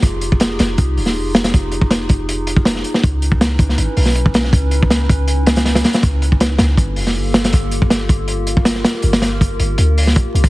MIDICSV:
0, 0, Header, 1, 4, 480
1, 0, Start_track
1, 0, Tempo, 375000
1, 41, Time_signature, 4, 2, 24, 8
1, 13427, End_track
2, 0, Start_track
2, 0, Title_t, "Ambient pad"
2, 0, Program_c, 0, 92
2, 0, Note_on_c, 0, 63, 82
2, 0, Note_on_c, 0, 65, 71
2, 0, Note_on_c, 0, 67, 73
2, 0, Note_on_c, 0, 68, 90
2, 3830, Note_off_c, 0, 65, 0
2, 3830, Note_off_c, 0, 68, 0
2, 3831, Note_off_c, 0, 67, 0
2, 3881, Note_on_c, 0, 71, 89
2, 3882, Note_on_c, 0, 61, 84
2, 3882, Note_on_c, 0, 64, 72
2, 8631, Note_off_c, 0, 63, 0
2, 8633, Note_off_c, 0, 71, 0
2, 8634, Note_off_c, 0, 61, 0
2, 8634, Note_off_c, 0, 64, 0
2, 8682, Note_on_c, 0, 65, 75
2, 8682, Note_on_c, 0, 69, 88
2, 8683, Note_on_c, 0, 67, 74
2, 8684, Note_on_c, 0, 58, 80
2, 10583, Note_off_c, 0, 69, 0
2, 10600, Note_on_c, 0, 70, 89
2, 13427, Note_off_c, 0, 58, 0
2, 13427, Note_off_c, 0, 65, 0
2, 13427, Note_off_c, 0, 67, 0
2, 13427, Note_off_c, 0, 70, 0
2, 13427, End_track
3, 0, Start_track
3, 0, Title_t, "808-style bass"
3, 0, Program_c, 1, 38
3, 33, Note_on_c, 1, 29, 102
3, 739, Note_off_c, 1, 29, 0
3, 763, Note_on_c, 1, 29, 88
3, 979, Note_off_c, 1, 29, 0
3, 1002, Note_on_c, 1, 36, 82
3, 1243, Note_on_c, 1, 27, 110
3, 1263, Note_off_c, 1, 36, 0
3, 1484, Note_on_c, 1, 29, 106
3, 1503, Note_off_c, 1, 27, 0
3, 1944, Note_off_c, 1, 29, 0
3, 1970, Note_on_c, 1, 29, 96
3, 2668, Note_off_c, 1, 29, 0
3, 2684, Note_on_c, 1, 29, 86
3, 3625, Note_off_c, 1, 29, 0
3, 3885, Note_on_c, 1, 37, 100
3, 4585, Note_off_c, 1, 37, 0
3, 4595, Note_on_c, 1, 37, 84
3, 4815, Note_off_c, 1, 37, 0
3, 4842, Note_on_c, 1, 32, 81
3, 4955, Note_off_c, 1, 32, 0
3, 5083, Note_on_c, 1, 35, 95
3, 5784, Note_off_c, 1, 35, 0
3, 5797, Note_on_c, 1, 37, 104
3, 6501, Note_off_c, 1, 37, 0
3, 6521, Note_on_c, 1, 37, 85
3, 7463, Note_off_c, 1, 37, 0
3, 7722, Note_on_c, 1, 37, 100
3, 8423, Note_off_c, 1, 37, 0
3, 8444, Note_on_c, 1, 37, 91
3, 8660, Note_off_c, 1, 37, 0
3, 8671, Note_on_c, 1, 31, 81
3, 8924, Note_on_c, 1, 29, 109
3, 8943, Note_off_c, 1, 31, 0
3, 9163, Note_on_c, 1, 31, 107
3, 9183, Note_off_c, 1, 29, 0
3, 9624, Note_off_c, 1, 31, 0
3, 9644, Note_on_c, 1, 31, 102
3, 10345, Note_off_c, 1, 31, 0
3, 10360, Note_on_c, 1, 31, 86
3, 11302, Note_off_c, 1, 31, 0
3, 11564, Note_on_c, 1, 31, 98
3, 12264, Note_off_c, 1, 31, 0
3, 12284, Note_on_c, 1, 31, 88
3, 12500, Note_off_c, 1, 31, 0
3, 12525, Note_on_c, 1, 38, 98
3, 13007, Note_on_c, 1, 34, 103
3, 13027, Note_off_c, 1, 38, 0
3, 13118, Note_off_c, 1, 34, 0
3, 13241, Note_on_c, 1, 36, 98
3, 13427, Note_off_c, 1, 36, 0
3, 13427, End_track
4, 0, Start_track
4, 0, Title_t, "Drums"
4, 32, Note_on_c, 9, 36, 107
4, 32, Note_on_c, 9, 42, 89
4, 160, Note_off_c, 9, 36, 0
4, 160, Note_off_c, 9, 42, 0
4, 275, Note_on_c, 9, 42, 62
4, 403, Note_off_c, 9, 42, 0
4, 411, Note_on_c, 9, 36, 98
4, 512, Note_on_c, 9, 42, 92
4, 523, Note_on_c, 9, 38, 112
4, 539, Note_off_c, 9, 36, 0
4, 640, Note_off_c, 9, 42, 0
4, 651, Note_off_c, 9, 38, 0
4, 756, Note_on_c, 9, 42, 81
4, 767, Note_on_c, 9, 38, 102
4, 884, Note_off_c, 9, 42, 0
4, 895, Note_off_c, 9, 38, 0
4, 998, Note_on_c, 9, 42, 61
4, 1000, Note_on_c, 9, 36, 84
4, 1126, Note_off_c, 9, 42, 0
4, 1128, Note_off_c, 9, 36, 0
4, 1248, Note_on_c, 9, 46, 74
4, 1356, Note_on_c, 9, 38, 44
4, 1376, Note_off_c, 9, 46, 0
4, 1484, Note_off_c, 9, 38, 0
4, 1723, Note_on_c, 9, 38, 113
4, 1725, Note_on_c, 9, 42, 74
4, 1846, Note_off_c, 9, 42, 0
4, 1846, Note_on_c, 9, 42, 88
4, 1847, Note_off_c, 9, 38, 0
4, 1847, Note_on_c, 9, 38, 117
4, 1968, Note_off_c, 9, 42, 0
4, 1968, Note_on_c, 9, 42, 80
4, 1969, Note_on_c, 9, 36, 112
4, 1975, Note_off_c, 9, 38, 0
4, 2096, Note_off_c, 9, 42, 0
4, 2097, Note_off_c, 9, 36, 0
4, 2196, Note_on_c, 9, 42, 72
4, 2323, Note_on_c, 9, 36, 98
4, 2324, Note_off_c, 9, 42, 0
4, 2439, Note_on_c, 9, 38, 118
4, 2443, Note_on_c, 9, 42, 82
4, 2451, Note_off_c, 9, 36, 0
4, 2567, Note_off_c, 9, 38, 0
4, 2571, Note_off_c, 9, 42, 0
4, 2678, Note_on_c, 9, 42, 71
4, 2684, Note_on_c, 9, 36, 96
4, 2806, Note_off_c, 9, 42, 0
4, 2812, Note_off_c, 9, 36, 0
4, 2929, Note_on_c, 9, 42, 90
4, 3057, Note_off_c, 9, 42, 0
4, 3162, Note_on_c, 9, 42, 75
4, 3283, Note_on_c, 9, 36, 86
4, 3290, Note_off_c, 9, 42, 0
4, 3397, Note_on_c, 9, 38, 114
4, 3411, Note_off_c, 9, 36, 0
4, 3415, Note_on_c, 9, 42, 94
4, 3525, Note_off_c, 9, 38, 0
4, 3526, Note_on_c, 9, 38, 44
4, 3543, Note_off_c, 9, 42, 0
4, 3638, Note_on_c, 9, 42, 65
4, 3654, Note_off_c, 9, 38, 0
4, 3766, Note_off_c, 9, 42, 0
4, 3767, Note_on_c, 9, 38, 58
4, 3884, Note_on_c, 9, 36, 118
4, 3888, Note_on_c, 9, 42, 86
4, 3895, Note_off_c, 9, 38, 0
4, 4012, Note_off_c, 9, 36, 0
4, 4016, Note_off_c, 9, 42, 0
4, 4122, Note_on_c, 9, 42, 67
4, 4244, Note_on_c, 9, 36, 84
4, 4250, Note_off_c, 9, 42, 0
4, 4364, Note_on_c, 9, 38, 122
4, 4365, Note_on_c, 9, 42, 84
4, 4372, Note_off_c, 9, 36, 0
4, 4492, Note_off_c, 9, 38, 0
4, 4493, Note_off_c, 9, 42, 0
4, 4593, Note_on_c, 9, 42, 74
4, 4595, Note_on_c, 9, 36, 104
4, 4721, Note_off_c, 9, 42, 0
4, 4723, Note_off_c, 9, 36, 0
4, 4728, Note_on_c, 9, 38, 44
4, 4838, Note_on_c, 9, 42, 93
4, 4856, Note_off_c, 9, 38, 0
4, 4966, Note_off_c, 9, 42, 0
4, 5079, Note_on_c, 9, 46, 87
4, 5193, Note_on_c, 9, 38, 42
4, 5207, Note_off_c, 9, 46, 0
4, 5319, Note_on_c, 9, 42, 84
4, 5321, Note_off_c, 9, 38, 0
4, 5447, Note_off_c, 9, 42, 0
4, 5449, Note_on_c, 9, 36, 94
4, 5556, Note_on_c, 9, 42, 75
4, 5567, Note_on_c, 9, 38, 120
4, 5577, Note_off_c, 9, 36, 0
4, 5684, Note_off_c, 9, 38, 0
4, 5684, Note_off_c, 9, 42, 0
4, 5684, Note_on_c, 9, 38, 55
4, 5796, Note_on_c, 9, 36, 123
4, 5803, Note_on_c, 9, 42, 88
4, 5812, Note_off_c, 9, 38, 0
4, 5924, Note_off_c, 9, 36, 0
4, 5931, Note_off_c, 9, 42, 0
4, 6031, Note_on_c, 9, 42, 70
4, 6159, Note_off_c, 9, 42, 0
4, 6176, Note_on_c, 9, 36, 96
4, 6277, Note_on_c, 9, 38, 111
4, 6285, Note_on_c, 9, 42, 92
4, 6304, Note_off_c, 9, 36, 0
4, 6405, Note_off_c, 9, 38, 0
4, 6413, Note_off_c, 9, 42, 0
4, 6520, Note_on_c, 9, 36, 92
4, 6520, Note_on_c, 9, 42, 78
4, 6648, Note_off_c, 9, 36, 0
4, 6648, Note_off_c, 9, 42, 0
4, 6753, Note_on_c, 9, 42, 80
4, 6881, Note_off_c, 9, 42, 0
4, 6995, Note_on_c, 9, 42, 84
4, 7002, Note_on_c, 9, 38, 99
4, 7117, Note_off_c, 9, 42, 0
4, 7117, Note_on_c, 9, 42, 78
4, 7129, Note_off_c, 9, 38, 0
4, 7129, Note_on_c, 9, 38, 109
4, 7237, Note_off_c, 9, 38, 0
4, 7237, Note_on_c, 9, 38, 96
4, 7241, Note_off_c, 9, 42, 0
4, 7241, Note_on_c, 9, 42, 78
4, 7365, Note_off_c, 9, 38, 0
4, 7365, Note_on_c, 9, 38, 105
4, 7369, Note_off_c, 9, 42, 0
4, 7375, Note_on_c, 9, 42, 86
4, 7481, Note_off_c, 9, 42, 0
4, 7481, Note_on_c, 9, 42, 85
4, 7486, Note_off_c, 9, 38, 0
4, 7486, Note_on_c, 9, 38, 104
4, 7589, Note_off_c, 9, 42, 0
4, 7589, Note_on_c, 9, 42, 75
4, 7609, Note_off_c, 9, 38, 0
4, 7609, Note_on_c, 9, 38, 113
4, 7716, Note_off_c, 9, 42, 0
4, 7716, Note_on_c, 9, 42, 84
4, 7721, Note_on_c, 9, 36, 105
4, 7737, Note_off_c, 9, 38, 0
4, 7844, Note_off_c, 9, 42, 0
4, 7849, Note_off_c, 9, 36, 0
4, 7962, Note_on_c, 9, 42, 70
4, 8089, Note_on_c, 9, 36, 85
4, 8090, Note_off_c, 9, 42, 0
4, 8197, Note_on_c, 9, 42, 83
4, 8202, Note_on_c, 9, 38, 118
4, 8217, Note_off_c, 9, 36, 0
4, 8325, Note_off_c, 9, 42, 0
4, 8330, Note_off_c, 9, 38, 0
4, 8428, Note_on_c, 9, 38, 109
4, 8435, Note_on_c, 9, 42, 85
4, 8556, Note_off_c, 9, 38, 0
4, 8563, Note_off_c, 9, 42, 0
4, 8670, Note_on_c, 9, 36, 83
4, 8679, Note_on_c, 9, 42, 58
4, 8798, Note_off_c, 9, 36, 0
4, 8807, Note_off_c, 9, 42, 0
4, 8912, Note_on_c, 9, 46, 79
4, 9040, Note_off_c, 9, 46, 0
4, 9046, Note_on_c, 9, 38, 38
4, 9174, Note_off_c, 9, 38, 0
4, 9398, Note_on_c, 9, 38, 114
4, 9405, Note_on_c, 9, 42, 87
4, 9526, Note_off_c, 9, 38, 0
4, 9526, Note_off_c, 9, 42, 0
4, 9526, Note_on_c, 9, 42, 82
4, 9533, Note_on_c, 9, 38, 105
4, 9633, Note_off_c, 9, 42, 0
4, 9633, Note_on_c, 9, 42, 96
4, 9644, Note_on_c, 9, 36, 106
4, 9661, Note_off_c, 9, 38, 0
4, 9761, Note_off_c, 9, 42, 0
4, 9772, Note_off_c, 9, 36, 0
4, 9875, Note_on_c, 9, 42, 62
4, 10003, Note_off_c, 9, 42, 0
4, 10008, Note_on_c, 9, 36, 86
4, 10117, Note_on_c, 9, 38, 108
4, 10126, Note_on_c, 9, 42, 86
4, 10136, Note_off_c, 9, 36, 0
4, 10245, Note_off_c, 9, 38, 0
4, 10254, Note_off_c, 9, 42, 0
4, 10359, Note_on_c, 9, 36, 100
4, 10360, Note_on_c, 9, 42, 64
4, 10487, Note_off_c, 9, 36, 0
4, 10488, Note_off_c, 9, 42, 0
4, 10595, Note_on_c, 9, 42, 88
4, 10723, Note_off_c, 9, 42, 0
4, 10838, Note_on_c, 9, 42, 67
4, 10966, Note_off_c, 9, 42, 0
4, 10966, Note_on_c, 9, 36, 97
4, 11074, Note_on_c, 9, 38, 119
4, 11083, Note_on_c, 9, 42, 96
4, 11094, Note_off_c, 9, 36, 0
4, 11201, Note_off_c, 9, 38, 0
4, 11201, Note_on_c, 9, 38, 41
4, 11211, Note_off_c, 9, 42, 0
4, 11321, Note_off_c, 9, 38, 0
4, 11321, Note_on_c, 9, 38, 111
4, 11327, Note_on_c, 9, 42, 75
4, 11443, Note_off_c, 9, 38, 0
4, 11443, Note_on_c, 9, 38, 39
4, 11455, Note_off_c, 9, 42, 0
4, 11551, Note_on_c, 9, 42, 64
4, 11571, Note_off_c, 9, 38, 0
4, 11679, Note_off_c, 9, 42, 0
4, 11688, Note_on_c, 9, 38, 109
4, 11691, Note_on_c, 9, 42, 80
4, 11799, Note_off_c, 9, 38, 0
4, 11799, Note_on_c, 9, 38, 115
4, 11803, Note_off_c, 9, 42, 0
4, 11803, Note_on_c, 9, 42, 84
4, 11927, Note_off_c, 9, 38, 0
4, 11931, Note_off_c, 9, 42, 0
4, 12045, Note_on_c, 9, 36, 97
4, 12051, Note_on_c, 9, 42, 69
4, 12173, Note_off_c, 9, 36, 0
4, 12179, Note_off_c, 9, 42, 0
4, 12284, Note_on_c, 9, 42, 84
4, 12412, Note_off_c, 9, 42, 0
4, 12518, Note_on_c, 9, 42, 91
4, 12646, Note_off_c, 9, 42, 0
4, 12769, Note_on_c, 9, 46, 88
4, 12893, Note_on_c, 9, 38, 43
4, 12897, Note_off_c, 9, 46, 0
4, 13003, Note_on_c, 9, 42, 78
4, 13006, Note_on_c, 9, 36, 98
4, 13021, Note_off_c, 9, 38, 0
4, 13131, Note_off_c, 9, 42, 0
4, 13134, Note_off_c, 9, 36, 0
4, 13252, Note_on_c, 9, 42, 63
4, 13359, Note_off_c, 9, 42, 0
4, 13359, Note_on_c, 9, 42, 89
4, 13360, Note_on_c, 9, 36, 108
4, 13427, Note_off_c, 9, 36, 0
4, 13427, Note_off_c, 9, 42, 0
4, 13427, End_track
0, 0, End_of_file